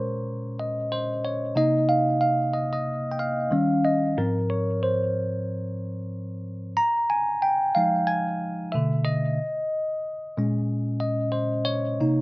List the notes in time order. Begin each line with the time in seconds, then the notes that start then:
Already playing: A#2 G#3 C#4 A#4 C5 C#5
0.59 D#5
0.92 C5
1.25 C#5
1.55 C3 A#3 D#4 D#5
1.89 F5
2.21 F5
2.54 D#5
2.73 D#5
3.12 G5
3.19 F5
3.51 D#3 G3 C#4
3.85 D#5
4.17 G#2 F3 C4 A#4
4.50 C#5
4.83 C5
6.77 A#5
7.10 G#5
7.42 G5
7.75 F3 G#3 D#4 F5
8.07 G#5
8.72 B2 D3 A3 E5
9.05 D#5
10.37 A#2 G#3 C#4
11.00 D#5
11.32 C5
11.65 C#5
12.00 C3 A#3 D#4